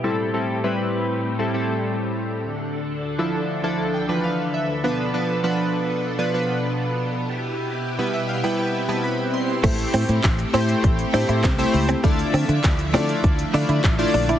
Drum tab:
CC |----------------|----------------|----------------|----------------|
HH |----------------|----------------|----------------|----------------|
SH |----------------|----------------|----------------|----------------|
CP |----------------|----------------|----------------|----------------|
SD |----------------|----------------|----------------|----------------|
BD |----------------|----------------|----------------|----------------|

CC |x---------------|----------------|
HH |-xox-xox-xox-xox|-xox-xox-xox-xox|
SH |xxxxxxxxxxxxxxxx|xxxxxxxxxxxxxxxx|
CP |----x-------x---|----x-------x---|
SD |----o-------o---|----o-------o---|
BD |o---o---o---o---|o---o---o---o---|